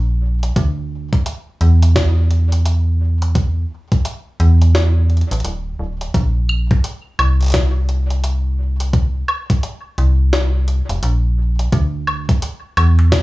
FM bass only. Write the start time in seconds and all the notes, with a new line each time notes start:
Already playing: A#1
0.56 D2
1.61 E2
4.40 E2
5.31 A1
5.45 D1
5.79 D1
6.14 A#1
7.19 C2
9.98 C2
10.89 F1
11.03 A#1
11.72 D2
12.77 E2